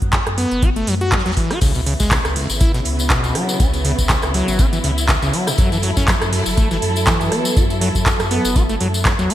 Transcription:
0.02 F#2, kick, closed hi-hat
0.13 kick, snare, clap, closed hi-hat
0.27 F#2, cross-stick, closed hi-hat
0.38 B3, closed hi-hat, open hi-hat
0.51 F#1, closed hi-hat
0.62 F#4, kick, closed hi-hat
0.76 A3, closed hi-hat
0.87 F#2 F#3, closed hi-hat, open hi-hat
1.01 F#4, closed hi-hat
1.12 F#3, kick, snare, clap, closed hi-hat
1.19 snare, closed hi-hat
1.26 E2 F#3, snare, closed hi-hat
1.32 snare, closed hi-hat
1.37 E3, kick, closed hi-hat, open hi-hat
1.51 F#4, cross-stick, open hi-hat
1.61 C#2 C#3 B3 E4, kick, closed hi-hat, crash, tambourine
1.75 B2, closed hi-hat, tambourine
1.86 C#3, closed hi-hat, open hi-hat
2.00 C#2 G#3, kick, snare, closed hi-hat, tambourine
2.11 B2, kick, snare, clap, closed hi-hat, tambourine
2.25 C#2, cross-stick, closed hi-hat, tambourine
2.36 C#2, open hi-hat
2.50 G#1, closed hi-hat, tambourine
2.60 E4, kick, closed hi-hat, tambourine
2.74 B2, snare, closed hi-hat, tambourine
2.85 C#2, closed hi-hat, open hi-hat
2.99 closed hi-hat, tambourine
3.10 B2, kick, snare, clap, closed hi-hat, tambourine
3.24 C#2, closed hi-hat, tambourine
3.35 F#3, cross-stick, closed hi-hat, open hi-hat
3.49 closed hi-hat, tambourine
3.60 C#2 C#4, kick, closed hi-hat, tambourine
3.73 closed hi-hat, tambourine
3.85 C#3, closed hi-hat, open hi-hat
3.98 C#2, kick, closed hi-hat, tambourine
4.09 kick, snare, clap, closed hi-hat, tambourine
4.22 C#2, cross-stick, closed hi-hat, tambourine
4.34 F#3, closed hi-hat, open hi-hat
4.48 G#1, closed hi-hat, tambourine
4.59 C#4, kick, closed hi-hat, tambourine
4.73 E3, closed hi-hat, tambourine
4.84 C#2 C#3, closed hi-hat, open hi-hat
4.98 closed hi-hat, tambourine
5.08 C#3, kick, snare, clap, closed hi-hat, tambourine
5.22 C#2 C#3, closed hi-hat, tambourine
5.33 F#3, closed hi-hat, open hi-hat
5.47 B2, cross-stick, closed hi-hat, tambourine
5.58 F#2 F#3 A4, kick, closed hi-hat, tambourine
5.72 E3, closed hi-hat, tambourine
5.82 F#3, closed hi-hat, open hi-hat
5.97 F#2 C#4, kick, snare, closed hi-hat, tambourine
6.07 E3, kick, snare, clap, closed hi-hat, tambourine
6.22 F#2, cross-stick, closed hi-hat, tambourine
6.33 F#2, open hi-hat
6.46 F#1, closed hi-hat, tambourine
6.57 A3, kick, closed hi-hat, tambourine
6.71 E3, snare, closed hi-hat, tambourine
6.82 F#2, closed hi-hat, open hi-hat
6.96 closed hi-hat, tambourine
7.07 E3, kick, snare, clap, closed hi-hat, tambourine
7.21 F#2, closed hi-hat, tambourine
7.32 B3, cross-stick, closed hi-hat, open hi-hat
7.45 closed hi-hat, tambourine
7.57 F#2 F#4, kick, closed hi-hat, tambourine
7.70 closed hi-hat, tambourine
7.81 F#3, closed hi-hat, open hi-hat
7.95 F#2, kick, closed hi-hat, tambourine
8.06 kick, snare, clap, closed hi-hat, tambourine
8.20 F#2, cross-stick, closed hi-hat, tambourine
8.31 B3, closed hi-hat, open hi-hat
8.45 F#1, closed hi-hat, tambourine
8.56 F#4, kick, closed hi-hat, tambourine
8.69 A3, closed hi-hat, tambourine
8.81 F#2 F#3, closed hi-hat, open hi-hat
8.94 closed hi-hat, tambourine
9.05 F#3, kick, snare, clap, closed hi-hat, tambourine
9.19 E2 F#3, closed hi-hat, tambourine
9.30 B3, closed hi-hat, open hi-hat

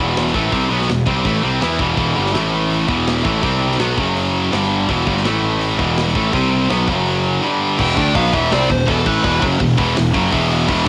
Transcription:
Already playing: E1 E2
0.00 B2 E3
0.16 snare, open hi-hat
0.27 snare
0.34 A1 A2 E3 A3, kick
0.51 C2 C3 G3 C4, kick, open hi-hat
0.69 B1 B2 F#3 B3
0.81 snare
0.88 E1 E2 B2, snare, open hi-hat
1.06 C2 C3 G3 C4, kick
1.24 A1 A2 E3 A3, kick, open hi-hat
1.43 C2 C3 G3 C4
1.61 E2 E3 B3 E4, snare, open hi-hat
1.71 snare
1.79 E1 E2 B2 E3, kick
1.97 E1 E2 B2 E3, kick, open hi-hat
2.15 G1 G2 D3 G3
2.26 snare
2.33 A1 A2 E3 A3, snare, open hi-hat
2.70 open hi-hat
2.87 E1 E2 B2 E3, kick
3.06 snare, open hi-hat
3.17 snare
3.24 A1 A2 E3 A3, kick
3.42 C2 C3 G3 C4, kick, open hi-hat
3.71 snare
3.79 B1 B2 F#3 B3, snare, open hi-hat
3.96 F#1 F#2 C#3 F#3, kick
4.16 open hi-hat
4.51 G1 G2 D3 G3, snare, open hi-hat
4.63 snare
4.88 E1 E2 B2 E3, kick, open hi-hat
5.06 G1 G2 D3 G3, kick
5.17 snare
5.24 A1 A2 E3 A3, snare, open hi-hat
5.61 open hi-hat
5.78 E1 E2 B2 E3, kick
5.97 snare, open hi-hat
6.08 snare
6.15 A1 A2 E3 A3, kick
6.32 C2 C3 G3 C4, kick, open hi-hat
6.69 B1 B2 F#3 B3, snare, open hi-hat
6.88 F#1 F#2 C#3 F#3, kick
7.06 open hi-hat
7.42 G2 D3 G3
7.79 E1 E2 B2 E3 G5, kick, crash
7.96 D2 D3 A3 D4, kick, open hi-hat
8.15 B1 B2 F#3 B3 F5, kick, open hi-hat
8.33 E1 E2 B2 E3 E5, kick, open hi-hat
8.51 C2 C3 G3 C4 D5, snare, open hi-hat
8.69 E1 E2 B2 C5, kick, open hi-hat
8.87 E1 E2 B2 E3 A4, kick, open hi-hat
9.05 A1 A2 E3 A3 B4, kick, open hi-hat
9.24 E1 E2 B2 E3, kick, open hi-hat
9.41 F#1 F#2 C#3 F#3, kick, open hi-hat
9.60 E1 E2 B2, kick, open hi-hat
9.77 E1 E2 B2 E3, kick, open hi-hat
9.96 E1 E2 B2, snare, open hi-hat
10.13 F#1 F#2 C#3 F#3, kick, open hi-hat
10.31 E1 E2 B2 E3, kick, open hi-hat
10.51 open hi-hat
10.67 E1 E2 B2 E3, kick, crash
10.85 D3

